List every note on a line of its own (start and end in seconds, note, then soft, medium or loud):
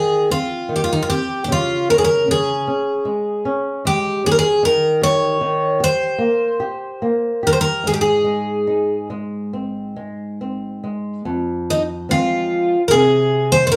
0.00 0.28 D#3 soft
0.00 0.31 G#4 medium
0.30 0.69 C4 soft
0.30 0.75 F4 medium
0.69 1.08 D#3 soft
0.76 0.83 G4 medium
0.84 0.93 F4 medium
0.93 1.01 D#4 medium
1.03 1.09 F4 medium
1.09 1.49 C4 soft
1.09 1.43 G4 medium
1.44 2.27 C#3 medium
1.44 1.51 G4 medium
1.52 1.88 F4 medium
1.90 2.28 C#4 soft
1.90 1.97 A#4 medium
1.98 2.04 G#4 medium
2.04 2.30 A#4 medium
2.28 2.66 C#3 medium
2.28 3.86 G#4 medium
2.67 3.05 C#4 soft
3.05 3.43 G#3 soft
3.45 3.83 C#4 medium
3.85 4.23 G#3 soft
3.85 4.22 G4 medium
4.24 4.62 C#4 soft
4.24 4.31 G#4 medium
4.32 4.37 A#4 medium
4.39 4.64 G#4 medium
4.63 5.40 D#3 medium
4.63 5.00 A#4 medium
5.01 5.39 G4 soft
5.01 5.77 C#5 medium
5.41 5.79 D#3 medium
5.80 6.19 G4 medium
5.80 7.40 C5 medium
6.18 6.59 A#3 soft
6.60 7.00 G4 soft
7.02 7.41 A#3 soft
7.43 7.82 G4 soft
7.47 7.52 A#4 medium
7.53 7.58 C5 medium
7.61 7.86 A#4 medium
7.84 11.22 G#2 medium
7.84 7.92 G#4 medium
7.94 7.99 G4 medium
8.01 9.07 G#4 medium
8.24 8.65 G#3 soft
8.67 9.08 D#4 soft
9.10 9.51 G#3 soft
9.53 9.95 C4 soft
9.96 10.38 G#3 soft
10.41 10.82 C4 soft
10.84 11.25 G#3 soft
11.25 12.07 F2 medium
11.70 11.81 D#4 medium
12.09 12.75 F3 soft
12.09 12.75 G#3 soft
12.09 12.76 C4 soft
12.09 12.82 F4 medium
12.88 13.54 G#4 medium
12.88 12.93 A#4 medium
12.93 13.70 C3 medium
13.52 13.64 C5 medium
13.67 13.71 C5 medium
13.72 13.76 F3 soft
13.72 13.76 A#4 medium